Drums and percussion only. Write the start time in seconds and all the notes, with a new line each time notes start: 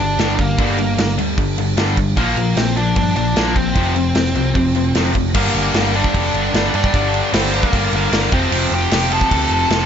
0.19 snare, crash
0.39 kick, crash
0.58 kick, crash
0.78 crash
0.98 snare, crash
1.18 crash
1.38 kick, crash
1.58 crash
1.77 snare, crash
1.97 kick, crash
2.17 kick, crash
2.37 crash
2.57 snare, crash
2.77 crash
2.96 kick, crash
3.16 crash
3.36 snare, crash
3.56 kick, crash
3.75 kick, crash
3.96 crash
4.15 snare, crash
4.35 crash
4.55 kick, crash
4.75 crash
4.95 snare, crash
5.15 kick, crash
5.34 kick, crash
5.55 crash
5.74 snare, crash
5.94 crash
6.04 kick
6.14 kick, crash
6.34 crash
6.54 snare, crash
6.74 crash
6.84 kick
6.94 kick, crash
7.14 crash
7.33 snare, crash
7.54 crash
7.63 kick
7.73 kick, crash
7.93 crash
8.13 snare, crash
8.32 kick, crash
8.52 crash
8.72 crash
8.91 snare, crash
9.12 crash
9.21 kick
9.31 kick, crash
9.51 crash
9.70 snare, crash